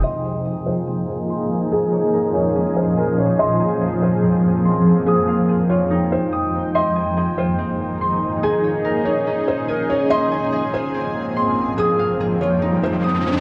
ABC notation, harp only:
X:1
M:4/4
L:1/8
Q:1/4=143
K:Ab
V:1 name="Harp"
c' a A F C2 c'2 | a d B A D2 a2 | c' a A F C2 c'2 | e' f A F E2 e'2 |
c' a A F C2 c'2 | a d B A D2 a2 | c' a A F C2 c'2 | e' f A F E2 e'2 |]